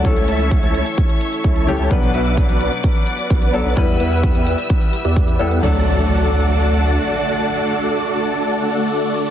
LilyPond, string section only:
\new Staff \with { instrumentName = "String section" } { \time 4/4 \key d \major \tempo 4 = 129 << { <cis'' e'' cis'''>1 | <d'' fis'' d'''>1 | <g' e'' e'''>1 | <d d' a' fis'' a''>1~ |
<d d' a' fis'' a''>1 | } \\ { a'1 | b'1~ | b'1 | r1 |
r1 | } >> }